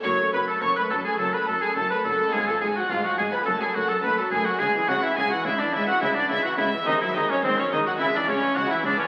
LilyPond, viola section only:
\new Staff \with { instrumentName = "Viola section" } { \clef bass \time 4/4 \key fis \minor \tempo 4 = 106 fis16 a16 fis16 a16 fis16 a16 fis16 a16 fis16 a16 fis16 a16 fis16 a16 fis16 a16 | gis16 eis16 gis16 eis16 gis16 eis16 gis16 eis16 a16 fis16 a16 fis16 a16 fis16 a16 fis16 | gis16 e16 gis16 e16 gis16 e16 gis16 e16 gis16 e16 gis16 e16 gis16 e16 gis16 e16 | gis16 fis16 gis16 fis16 gis16 fis16 gis16 fis16 gis16 e16 gis16 e16 gis16 e16 gis16 e16 | }